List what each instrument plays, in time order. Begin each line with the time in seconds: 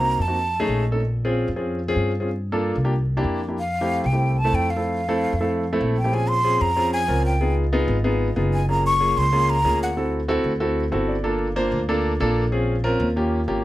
Already playing: upright bass C2, grand piano A#3 C4 D#4 F#4, flute A#5
0.19 upright bass F2, flute A5
0.28 grand piano A#3 C4 D#4 F#4
0.60 grand piano A3 C#4 D#4 G#4
0.67 upright bass A#1
0.92 grand piano A3 C#4 D#4 A4
1.25 grand piano C4 C#4 F4 G#4
1.48 upright bass F2
1.56 grand piano C4 C#4 F4 G#4
1.88 grand piano C4 C#4 F4 G#4
1.96 upright bass G2
2.20 grand piano C4 C#4 F4 G#4
2.52 grand piano A#3 D4 F4 A4
2.76 upright bass C2
2.84 grand piano A#3 D4 F4 G4
3.17 grand piano A#3 D4 E4 G4
3.24 upright bass F2
3.48 grand piano A#3 D4 E4 G4
3.59 flute F5
3.81 grand piano A3 C4 E4 G4
4.04 upright bass C2, flute G5
4.13 grand piano A3 C4 E4 G4
4.38 flute A5
4.45 grand piano A3 C4 E4 A4
4.53 upright bass F2, flute G5
4.70 flute F5
4.76 grand piano A3 C4 E4 A4
5.08 grand piano A3 C4 E4 A4
5.33 upright bass F2
5.40 grand piano A3 C4 E4 A4
5.72 grand piano A3 C4 E4 A4
5.81 upright bass A#1
5.98 flute G5
6.04 grand piano A3 C4 E4 G4
6.12 grand piano C4 C#4 F4 G#4, flute G#5
6.29 flute C6
6.44 grand piano C4 C#4 F4 G#4
6.61 upright bass F2, flute A#5
6.76 grand piano C4 C#4 F4 G#4
6.93 flute G#5
7.08 upright bass C#2, grand piano C4 C#4 F4 A#4
7.26 flute G5
7.41 grand piano B3 D#4 F4 G#4
7.73 grand piano B3 D#4 F4 G#4
7.88 upright bass G#1
8.04 grand piano B3 D#4 F4 G#4
8.36 upright bass F#1, grand piano B3 D#4 F4 G#4
8.54 flute G#5
8.69 grand piano A#3 C#4 F4 G#4, flute A#5
8.86 flute C#6
9.00 grand piano A#3 C#4 F4 G#4
9.16 upright bass C#2, flute C6
9.32 grand piano A#3 C#4 F4 G#4
9.50 flute A#5
9.64 upright bass D2, grand piano A#3 C#4 F4 G#4
9.83 flute F#5
9.97 grand piano C4 E4 F#4 A4
10.28 grand piano C4 E4 F#4 A4
10.44 upright bass D2
10.60 grand piano C4 E4 F#4 A4
10.92 upright bass G1, grand piano C4 E4 F#4 A4 A5
11.08 grand piano D5
11.24 grand piano A#3 D4 F4 A4
11.56 grand piano A#3 D4 F4 C5
11.72 upright bass D2
11.89 grand piano A#3 D4 F4 A4
12.20 upright bass A#1, grand piano A#3 D4 F4 A4
12.52 grand piano C4 C#4 F4 G#4
12.84 grand piano C4 C#4 F4 A#4
13.00 upright bass D#2
13.16 grand piano A#3 C#4 F4 G4
13.48 upright bass G#1, grand piano A#3 C#4 F4 G4